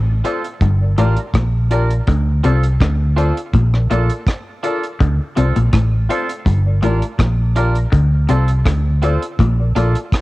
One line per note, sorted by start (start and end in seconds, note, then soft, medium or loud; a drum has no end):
0.00 0.20 A1 medium
0.00 0.10 A2 medium
0.24 0.45 C4 medium
0.24 0.38 F4 medium
0.24 0.45 F4 medium
0.24 0.39 A4 medium
0.24 0.45 A4 medium
0.24 0.39 C5 medium
0.24 0.39 D5 loud
0.24 closed hi-hat medium
0.44 closed hi-hat medium
0.61 0.94 G1 loud
0.61 0.84 G2 medium
0.61 kick loud
0.61 closed hi-hat medium
0.81 0.88 A#4 soft
0.81 0.88 D5 soft
0.98 1.15 A1 medium
0.98 1.10 A2 medium
0.98 1.18 D4 medium
0.98 1.12 F4 loud
0.98 1.18 F4 medium
0.98 1.12 G4 medium
0.98 1.12 A#4 medium
0.98 1.18 A#4 loud
0.98 1.12 D5 loud
0.98 closed hi-hat medium
1.17 closed hi-hat medium
1.34 2.00 A#1 medium
1.34 1.57 A#2 medium
1.34 kick loud
1.34 cross-stick loud
1.34 closed hi-hat loud
1.70 1.91 D4 medium
1.70 1.85 F4 medium
1.70 1.91 F4 medium
1.70 1.85 G4 medium
1.70 1.85 A#4 medium
1.70 1.92 A#4 loud
1.70 1.85 D5 loud
1.70 closed hi-hat medium
1.90 closed hi-hat soft
2.07 2.40 D2 loud
2.07 2.30 D3 medium
2.07 kick loud
2.07 closed hi-hat medium
2.43 2.77 C2 medium
2.43 2.67 C3 medium
2.43 2.64 C4 medium
2.43 2.58 F4 medium
2.43 2.64 F4 medium
2.43 2.58 A4 medium
2.43 2.65 A4 medium
2.43 2.58 C5 medium
2.43 2.58 D5 medium
2.43 closed hi-hat medium
2.64 closed hi-hat medium
2.81 3.31 D2 medium
2.81 3.03 D3 medium
2.81 kick loud
2.81 cross-stick medium
2.81 closed hi-hat loud
3.16 3.37 C4 medium
3.16 3.31 F4 medium
3.16 3.37 F4 medium
3.16 3.31 A4 medium
3.16 3.38 A4 medium
3.16 3.31 C5 medium
3.16 3.32 D5 loud
3.16 closed hi-hat medium
3.37 closed hi-hat medium
3.54 3.87 A#1 medium
3.54 3.76 A#2 medium
3.54 kick loud
3.54 closed hi-hat medium
3.73 3.80 A#4 soft
3.73 3.80 D5 soft
3.73 cross-stick medium
3.90 4.08 A#1 medium
3.90 4.03 A#2 medium
3.90 4.11 D4 medium
3.90 4.04 F4 medium
3.90 4.11 F4 medium
3.90 4.04 A4 medium
3.90 4.11 A4 medium
3.90 4.05 A#4 medium
3.90 4.05 D5 medium
3.90 closed hi-hat medium
4.09 closed hi-hat medium
4.27 kick loud
4.27 cross-stick loud
4.27 closed hi-hat loud
4.63 4.84 D4 medium
4.63 4.77 F4 medium
4.63 4.84 F4 medium
4.63 4.78 A4 medium
4.63 4.84 A4 medium
4.63 4.78 A#4 medium
4.63 4.78 D5 loud
4.63 closed hi-hat medium
4.83 closed hi-hat medium
5.00 5.18 D2 medium
5.00 5.12 D3 medium
5.00 kick loud
5.00 closed hi-hat medium
5.36 5.54 C2 medium
5.36 5.48 C3 medium
5.36 5.57 C4 medium
5.36 5.50 F4 medium
5.36 5.57 F4 medium
5.36 5.51 A4 medium
5.36 5.57 A4 medium
5.36 5.51 C5 medium
5.36 5.51 D5 loud
5.36 closed hi-hat medium
5.56 5.72 A#1 loud
5.56 5.66 A#2 medium
5.56 closed hi-hat soft
5.73 6.06 A1 medium
5.73 5.95 A2 medium
5.73 kick loud
5.73 cross-stick loud
5.73 closed hi-hat loud
6.09 6.30 C4 medium
6.09 6.24 F4 loud
6.09 6.30 F4 medium
6.09 6.24 A4 medium
6.09 6.31 A4 medium
6.09 6.24 C5 medium
6.09 6.24 D5 loud
6.09 closed hi-hat medium
6.29 closed hi-hat medium
6.46 6.79 G1 medium
6.46 6.68 G2 medium
6.46 kick loud
6.46 closed hi-hat medium
6.66 6.73 A#4 soft
6.66 6.73 D5 soft
6.82 7.00 A1 medium
6.82 6.94 A2 medium
6.82 7.03 D4 medium
6.82 6.97 F4 loud
6.82 7.04 F4 medium
6.82 6.97 G4 medium
6.82 6.97 A#4 medium
6.82 7.04 A#4 medium
6.82 6.97 D5 loud
6.82 closed hi-hat medium
7.02 closed hi-hat medium
7.19 7.85 A#1 medium
7.19 7.42 A#2 medium
7.19 kick loud
7.19 cross-stick loud
7.19 closed hi-hat loud
7.56 7.76 D4 medium
7.56 7.70 F4 medium
7.56 7.77 F4 medium
7.56 7.71 G4 medium
7.56 7.77 A#4 loud
7.56 7.71 A#4 medium
7.56 7.71 D5 loud
7.56 closed hi-hat medium
7.75 closed hi-hat soft
7.92 8.26 D2 loud
7.92 8.14 D3 medium
7.92 kick loud
7.92 closed hi-hat medium
8.29 8.62 C2 medium
8.29 8.51 C3 medium
8.29 8.50 C4 medium
8.29 8.43 F4 medium
8.29 8.50 F4 medium
8.29 8.43 A4 medium
8.29 8.50 A4 loud
8.29 8.44 C5 medium
8.29 8.44 D5 loud
8.29 closed hi-hat medium
8.48 closed hi-hat medium
8.66 9.16 D2 medium
8.66 8.88 D3 medium
8.66 kick loud
8.66 cross-stick loud
8.66 closed hi-hat loud
9.02 9.23 C4 medium
9.02 9.17 F4 medium
9.02 9.23 F4 medium
9.02 9.17 A4 medium
9.02 9.23 A4 medium
9.02 9.17 C5 medium
9.02 9.17 D5 loud
9.02 closed hi-hat medium
9.22 closed hi-hat medium
9.39 9.72 A#1 medium
9.39 9.62 A#2 medium
9.39 kick loud
9.39 closed hi-hat medium
9.59 9.66 A#4 soft
9.59 9.66 D5 soft
9.75 9.93 A#1 medium
9.75 9.88 A#2 medium
9.75 9.96 D4 medium
9.75 9.90 F4 medium
9.75 9.96 F4 medium
9.75 9.90 A4 medium
9.75 9.96 A4 medium
9.75 9.90 A#4 medium
9.75 9.91 D5 loud
9.75 closed hi-hat medium
9.95 closed hi-hat soft
10.12 kick loud
10.12 cross-stick loud
10.12 closed hi-hat loud